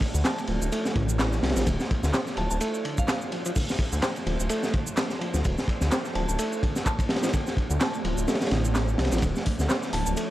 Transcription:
Already playing: analog synth pad F3 A3 D4 A4
0.01 kick, ride
0.14 detuned saw bass D2, shaker
0.25 reed electric piano C4, synth bell A5, snare, clap, ride, shaker
0.38 ride, shaker
0.47 detuned saw bass D1, reed electric piano F3, ride
0.62 detuned saw bass D1, shaker
0.72 reed electric piano A3, ride, shaker
0.85 snare, shaker
0.95 detuned saw bass A1, reed electric piano D3, kick, ride
1.09 shaker
1.19 snare, clap, ride, shaker
1.33 snare, shaker
1.43 detuned saw bass C2, reed electric piano F3, snare, ride
1.49 snare, ride
1.56 detuned saw bass A1, reed electric piano F3, snare, ride, shaker
1.61 snare, ride
1.66 detuned saw bass D1, reed electric piano D3, analog synth pad C5, kick, ride, shaker
1.80 snare, shaker
1.91 kick, ride
2.03 detuned saw bass D2, snare, shaker
2.14 reed electric piano C4, snare, clap, ride, shaker
2.27 snare, shaker
2.37 detuned saw bass D1, reed electric piano F3, synth bell A5, ride
2.51 detuned saw bass D1, synth bell A5, shaker
2.61 reed electric piano A3, ride, shaker
2.74 shaker
2.85 reed electric piano D3, ride
2.98 synth bell F5, kick, shaker
3.08 synth bell F5, snare, clap, ride, shaker
3.21 shaker
3.32 reed electric piano F3, ride
3.45 reed electric piano F3, ride, shaker
3.56 reed electric piano D3, kick, open hi-hat, shaker
3.69 snare, shaker
3.79 kick, ride
3.92 detuned saw bass D2, shaker
4.02 reed electric piano C4, snare, clap, ride, shaker
4.16 ride, shaker
4.26 detuned saw bass D1, reed electric piano F3, ride
4.40 detuned saw bass D1, shaker
4.49 reed electric piano A3, ride, shaker
4.63 snare, shaker
4.73 reed electric piano D3, kick, ride
4.87 shaker
4.97 snare, clap, ride, shaker
5.10 snare, shaker
5.21 reed electric piano F3, ride
5.34 detuned saw bass D2, reed electric piano F3, snare, shaker
5.44 detuned saw bass D1, reed electric piano D3, kick, ride, shaker
5.58 snare, shaker
5.68 kick, ride
5.81 detuned saw bass D2, snare, shaker
5.91 reed electric piano C4, snare, clap, ride, shaker
6.05 snare, shaker
6.15 detuned saw bass D1, reed electric piano F3, synth bell A5, ride
6.29 detuned saw bass D1, synth bell A5, shaker
6.39 reed electric piano A3, ride, shaker
6.52 shaker
6.62 reed electric piano D3, kick, ride
6.76 snare, shaker
6.86 synth bell A5, kick, clap, ride, shaker
6.99 kick, ride, shaker
7.09 reed electric piano F3, snare, ride
7.16 snare, ride
7.23 reed electric piano F3, snare, ride, shaker
7.29 snare, ride
7.33 reed electric piano D3, kick, ride, shaker
7.47 snare, shaker
7.57 kick, ride
7.70 detuned saw bass D2, shaker
7.81 reed electric piano C4, synth bell A5, snare, clap, ride, shaker
7.93 ride, shaker
8.04 detuned saw bass D1, reed electric piano F3, ride
8.18 detuned saw bass D1, shaker
8.28 reed electric piano A3, snare, ride, shaker
8.35 snare, ride
8.41 snare, ride, shaker
8.47 snare, ride
8.51 detuned saw bass A1, reed electric piano D3, snare, ride
8.65 shaker
8.75 snare, clap, ride, shaker
8.88 shaker
8.98 detuned saw bass C2, reed electric piano F3, snare, ride
9.05 snare, ride
9.12 detuned saw bass A1, reed electric piano F3, snare, ride, shaker
9.17 snare, ride
9.22 detuned saw bass D1, reed electric piano D3, analog synth pad B4, kick, ride, shaker
9.36 snare, shaker
9.46 kick, open hi-hat, ride
9.59 detuned saw bass D2, snare, shaker
9.69 reed electric piano C4, snare, clap, ride, shaker
9.83 snare, shaker
9.93 detuned saw bass D1, reed electric piano D3, synth bell A5, open hi-hat, ride
10.06 detuned saw bass D1, synth bell A5, shaker
10.17 reed electric piano A3, ride, shaker

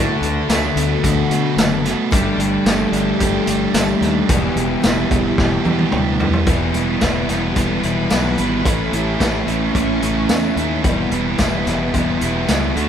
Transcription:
Already playing: fingered electric bass A2, distorted electric guitar D3, overdriven electric guitar D3 A3 D4 F#4, steel-string acoustic guitar A3 B3 F#4, string machine F#4 A4 B4 D5
0.21 fingered electric bass D2, steel-string acoustic guitar A3 B3 F#4, closed hi-hat
0.48 fingered electric bass D2, steel-string acoustic guitar D3 B3 F#4, distorted electric guitar A3, snare, closed hi-hat, tambourine
0.76 fingered electric bass D2, distorted electric guitar B3, closed hi-hat
1.03 fingered electric bass D2, distorted electric guitar F#4, kick, closed hi-hat
1.30 fingered electric bass D3, steel-string acoustic guitar A3 F#4, distorted electric guitar B3, closed hi-hat
1.56 fingered electric bass F#1, steel-string acoustic guitar D3 B3 F#4, distorted electric guitar A3, snare, closed hi-hat, tambourine
1.84 steel-string acoustic guitar A3 F#4, distorted electric guitar B3, snare, closed hi-hat
2.11 fingered electric bass G1, distorted electric guitar G3, steel-string acoustic guitar A3 D4 G4, overdriven electric guitar A3 D4 G4, string machine D4 G4 A4 D5, kick, closed hi-hat
2.38 fingered electric bass G1, steel-string acoustic guitar A3 D4 G4, closed hi-hat
2.66 fingered electric bass G1, steel-string acoustic guitar G3 D4 G4, distorted electric guitar A3, snare, closed hi-hat, tambourine
2.92 fingered electric bass G1, distorted electric guitar D4, closed hi-hat
3.19 fingered electric bass G1, distorted electric guitar G4, kick, closed hi-hat
3.47 fingered electric bass G1, steel-string acoustic guitar A3 G4, distorted electric guitar D4, closed hi-hat
3.73 fingered electric bass G1, steel-string acoustic guitar G3 D4 G4, distorted electric guitar A3, snare, closed hi-hat, tambourine
4.01 fingered electric bass D#2, steel-string acoustic guitar A3 G4, distorted electric guitar D4, snare, closed hi-hat
4.28 fingered electric bass E1, distorted electric guitar E2, overdriven electric guitar B2 E3 G3 E4 G4, steel-string acoustic guitar B2 E3 G3 B3 G4, string machine E4 G4 B4 E5, kick, closed hi-hat
4.56 fingered electric bass E1, steel-string acoustic guitar E3 G3 B3 G4, closed hi-hat
4.82 fingered electric bass E1, steel-string acoustic guitar E3 B3 G4, distorted electric guitar G3, snare, closed hi-hat, tambourine
5.10 fingered electric bass E1, distorted electric guitar B3, kick, closed hi-hat
5.38 fingered electric bass E1, distorted electric guitar G4, kick, snare
5.65 fingered electric bass E2, steel-string acoustic guitar E3 G3 G4, distorted electric guitar B3, high tom
5.79 high tom
5.92 fingered electric bass D2, steel-string acoustic guitar E3 B3 G4, distorted electric guitar G3, mid tom
6.19 steel-string acoustic guitar E3 G3 G4, distorted electric guitar B3, floor tom
6.33 floor tom
6.46 fingered electric bass E1, distorted electric guitar E2 B2 E3 G3 B3 E4, kick, closed hi-hat
6.73 fingered electric bass E1, distorted electric guitar E2 B2 E3 G3 B3 E4, closed hi-hat
7.01 fingered electric bass E1, distorted electric guitar E2 B2 E3 G3 B3 E4, kick, snare, closed hi-hat, tambourine
7.27 fingered electric bass E1, distorted electric guitar E2 B2 E3 G3 B3 E4, string machine E4, snare, closed hi-hat
7.44 string machine G4
7.56 fingered electric bass E1, distorted electric guitar E2 B2 E3 G3 B3 E4, string machine A4, kick, closed hi-hat
7.71 string machine B4
7.83 fingered electric bass E1, distorted electric guitar E2 B2 E3 G3 B3 E4, closed hi-hat
8.10 fingered electric bass B1, distorted electric guitar E2 B2 E3 G3 B3 E4, snare, closed hi-hat, tambourine
8.38 fingered electric bass G#1, distorted electric guitar E2 B2 E3 G3 B3 E4, closed hi-hat
8.65 fingered electric bass A1, distorted electric guitar A2 E3 A3 C#4 E4, kick, closed hi-hat
8.79 string machine A4
8.93 fingered electric bass A1, distorted electric guitar A2 E3 A3 C#4 E4, string machine G4, closed hi-hat
9.19 fingered electric bass A1, distorted electric guitar A2 E3 A3 C#4 E4, string machine E4, kick, snare, closed hi-hat, tambourine
9.47 fingered electric bass A1, distorted electric guitar A2 E3 A3 C#4 E4, string machine C#4, closed hi-hat
9.73 fingered electric bass A1, distorted electric guitar A2 E3 A3 C#4 E4, kick, closed hi-hat
10.02 fingered electric bass A1, distorted electric guitar A2 E3 A3 C#4 E4, closed hi-hat
10.28 fingered electric bass E2, distorted electric guitar A2 E3 A3 C#4 E4, snare, closed hi-hat, tambourine
10.55 fingered electric bass D#2, distorted electric guitar A2 E3 A3 C#4 E4, closed hi-hat
10.82 fingered electric bass E1, distorted electric guitar E2 B2 E3 G3 B3 E4, kick, closed hi-hat
11.10 fingered electric bass E1, distorted electric guitar E2 B2 E3 G3 B3 E4, closed hi-hat
11.38 fingered electric bass E1, distorted electric guitar E2 B2 E3 G3 B3 E4, kick, snare, closed hi-hat, tambourine
11.65 fingered electric bass E1, distorted electric guitar E2 B2 E3 G3 B3 E4, snare, closed hi-hat
11.92 fingered electric bass E1, distorted electric guitar E2 B2 E3 G3 B3 E4, kick, closed hi-hat
12.20 fingered electric bass E1, distorted electric guitar E2 B2 E3 G3 B3 E4, closed hi-hat
12.47 fingered electric bass C#2, distorted electric guitar E2 B2 E3 G3 B3 E4, snare, closed hi-hat, tambourine
12.75 fingered electric bass D2, distorted electric guitar D3 A3 D4 F#4, closed hi-hat

